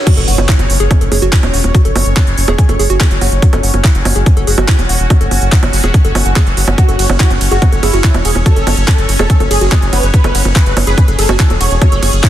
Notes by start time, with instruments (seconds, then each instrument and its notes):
0.07 synth texture C#4 C#5, synth arpeggio sound F#4, kick, closed hi-hat, crash, impact, high bongo
0.17 analog synth bass F#1, synth arpeggio sound A4, closed hi-hat
0.28 analog synth bass F#1, synth arpeggio sound F#5, open hi-hat
0.38 analog synth bass F#1, closed hi-hat, high bongo
0.49 synth arpeggio sound E4, kick, clap, closed hi-hat
0.59 analog synth bass F#1, closed hi-hat, high bongo
0.70 analog synth bass F#1, open hi-hat
0.80 analog synth bass F#1, synth arpeggio sound G#4, closed hi-hat
0.91 synth arpeggio sound G#5, kick, closed hi-hat, high bongo
1.01 analog synth bass F#1, synth arpeggio sound A4, closed hi-hat
1.12 analog synth bass F#1, synth arpeggio sound G#4, open hi-hat, high bongo
1.22 analog synth bass F#1, synth arpeggio sound F#4, closed hi-hat
1.33 synth arpeggio sound E4, kick, clap, closed hi-hat
1.43 analog synth bass E1, closed hi-hat, high bongo
1.54 analog synth bass E1, synth arpeggio sound F#5, open hi-hat
1.64 analog synth bass E1, closed hi-hat, high bongo
1.75 synth arpeggio sound F#4, kick, closed hi-hat
1.85 analog synth bass F#1, synth arpeggio sound A4, closed hi-hat
1.96 analog synth bass F#1, synth arpeggio sound F#5, open hi-hat, high bongo
2.06 analog synth bass F#1, closed hi-hat
2.17 synth arpeggio sound E4, kick, clap, closed hi-hat, high bongo
2.27 analog synth bass F#1, closed hi-hat
2.38 analog synth bass F#1, open hi-hat
2.48 analog synth bass E1, synth arpeggio sound G#4, closed hi-hat, high bongo
2.58 synth arpeggio sound G#5, kick, closed hi-hat
2.69 analog synth bass F#1, synth arpeggio sound A4, closed hi-hat, high bongo
2.79 analog synth bass F#1, synth arpeggio sound G#4, open hi-hat
2.90 analog synth bass F#1, synth arpeggio sound F#4, closed hi-hat
3.00 synth arpeggio sound E4, kick, clap, closed hi-hat, high bongo
3.11 analog synth bass F#1, closed hi-hat
3.21 analog synth bass F#1, synth arpeggio sound F#5, open hi-hat, high bongo
3.32 analog synth bass F#1, closed hi-hat
3.42 synth texture F#4, synth arpeggio sound F#4, kick, closed hi-hat
3.53 analog synth bass F#1, synth arpeggio sound A4, closed hi-hat, high bongo
3.63 analog synth bass F#1, synth arpeggio sound F#5, open hi-hat
3.74 analog synth bass F#1, closed hi-hat, high bongo
3.84 synth arpeggio sound E4, kick, clap, closed hi-hat
3.95 analog synth bass F#1, closed hi-hat
4.05 analog synth bass F#1, open hi-hat, high bongo
4.16 analog synth bass F#1, synth arpeggio sound G#4, closed hi-hat
4.26 synth arpeggio sound G#5, kick, closed hi-hat, high bongo
4.37 analog synth bass F#1, synth arpeggio sound A4, closed hi-hat
4.47 analog synth bass F#1, synth arpeggio sound G#4, open hi-hat
4.58 analog synth bass F#1, synth arpeggio sound F#4, high bongo
4.68 synth arpeggio sound E4, kick, clap, closed hi-hat
4.79 analog synth bass E1, closed hi-hat, high bongo
4.89 analog synth bass E1, synth arpeggio sound F#5, open hi-hat
5.00 analog synth bass E1, closed hi-hat
5.10 synth arpeggio sound F#4, kick, closed hi-hat, high bongo
5.21 analog synth bass F#1, synth arpeggio sound A4, closed hi-hat
5.31 analog synth bass F#1, synth arpeggio sound F#5, open hi-hat, high bongo
5.42 analog synth bass F#1, closed hi-hat
5.52 synth arpeggio sound E4, kick, clap, closed hi-hat
5.63 analog synth bass F#1, closed hi-hat, high bongo
5.73 analog synth bass F#1, open hi-hat
5.84 analog synth bass E1, synth arpeggio sound G#4, closed hi-hat, high bongo
5.94 synth arpeggio sound G#5, kick, closed hi-hat
6.05 analog synth bass F#1, synth arpeggio sound A4, closed hi-hat
6.15 analog synth bass F#1, synth arpeggio sound F#4, open hi-hat, high bongo
6.26 analog synth bass F#1, synth arpeggio sound F#5, closed hi-hat
6.36 synth arpeggio sound G#4, kick, clap, closed hi-hat, high bongo
6.47 analog synth bass F#1, closed hi-hat
6.57 analog synth bass F#1, synth arpeggio sound F#4, open hi-hat
6.68 analog synth bass F#1, synth arpeggio sound F#5, closed hi-hat, high bongo
6.78 synth arpeggio sound F#4, analog synth lead F#4, synth texture C#5, kick, closed hi-hat, high bongo
6.89 analog synth bass F#1, synth arpeggio sound A4, closed hi-hat
6.99 analog synth bass F#1, synth arpeggio sound F#5, open hi-hat, ride
7.10 analog synth bass F#1, closed hi-hat, high bongo
7.20 synth arpeggio sound E4, analog synth lead F#4, kick, clap, closed hi-hat
7.31 analog synth bass F#1, closed hi-hat, high bongo
7.41 analog synth bass F#1, open hi-hat, ride
7.51 analog synth bass F#1, analog synth lead F#4, synth arpeggio sound G#4, closed hi-hat
7.62 synth arpeggio sound G#5, kick, closed hi-hat, high bongo
7.72 analog synth bass F#1, synth arpeggio sound A4, closed hi-hat
7.83 analog synth bass F#1, analog synth lead E4, synth arpeggio sound G#4, open hi-hat, ride, high bongo
7.93 analog synth bass F#1, synth arpeggio sound F#4, closed hi-hat
8.04 analog synth lead E4, synth arpeggio sound E4, kick, clap, closed hi-hat
8.14 analog synth bass E1, closed hi-hat, high bongo
8.25 analog synth bass E1, analog synth lead G#4, synth arpeggio sound F#5, open hi-hat, ride
8.35 analog synth bass E1, closed hi-hat, high bongo
8.46 synth arpeggio sound F#4, analog synth lead A4, kick, closed hi-hat
8.56 analog synth bass F#1, synth arpeggio sound A4, closed hi-hat
8.67 analog synth bass F#1, synth arpeggio sound F#5, open hi-hat, ride, high bongo
8.77 analog synth bass F#1, closed hi-hat
8.88 synth arpeggio sound E4, analog synth lead A4, kick, clap, closed hi-hat, high bongo
8.98 analog synth bass F#1, closed hi-hat
9.09 analog synth bass F#1, open hi-hat, ride
9.19 analog synth bass E1, synth arpeggio sound G#4, analog synth lead A4, closed hi-hat, high bongo
9.30 synth arpeggio sound G#5, kick, closed hi-hat
9.40 analog synth bass F#1, synth arpeggio sound A4, closed hi-hat, high bongo
9.51 analog synth bass F#1, analog synth lead G#4, synth arpeggio sound G#4, open hi-hat, ride
9.61 analog synth bass F#1, synth arpeggio sound F#4, closed hi-hat
9.72 synth arpeggio sound E4, analog synth lead G#4, kick, clap, closed hi-hat, high bongo
9.82 analog synth bass F#1, closed hi-hat
9.93 analog synth bass F#1, analog synth lead B4, synth arpeggio sound F#5, open hi-hat, ride, high bongo
10.03 analog synth bass F#1, closed hi-hat
10.14 synth arpeggio sound F#4, synth texture G#4, analog synth lead B4, kick, closed hi-hat
10.24 analog synth bass F#1, synth arpeggio sound A4, closed hi-hat, high bongo
10.35 analog synth bass F#1, synth arpeggio sound F#5, open hi-hat, ride
10.45 analog synth bass F#1, high bongo
10.56 synth arpeggio sound E4, analog synth lead B4, kick, clap, closed hi-hat
10.66 analog synth bass F#1, closed hi-hat
10.77 analog synth bass F#1, open hi-hat, ride, high bongo
10.87 analog synth bass F#1, synth arpeggio sound G#4, analog synth lead B4, closed hi-hat
10.98 synth arpeggio sound G#5, kick, closed hi-hat, high bongo
11.08 analog synth bass F#1, synth arpeggio sound A4, closed hi-hat
11.19 analog synth bass F#1, synth arpeggio sound G#4, analog synth lead A4, open hi-hat, ride
11.29 analog synth bass F#1, synth arpeggio sound F#4, closed hi-hat, high bongo
11.40 synth arpeggio sound E4, analog synth lead A4, kick, clap, closed hi-hat
11.50 analog synth bass E1, closed hi-hat, high bongo
11.61 analog synth bass E1, analog synth lead C#5, synth arpeggio sound F#5, open hi-hat, ride
11.71 analog synth bass E1, closed hi-hat
11.82 synth arpeggio sound F#4, analog synth lead C#5, kick, closed hi-hat, high bongo
11.92 analog synth bass F#1, synth arpeggio sound A4, closed hi-hat
12.03 analog synth bass F#1, synth arpeggio sound F#5, open hi-hat, ride, high bongo
12.13 analog synth bass F#1, closed hi-hat
12.23 synth arpeggio sound E4, analog synth lead C#5, kick, clap, closed hi-hat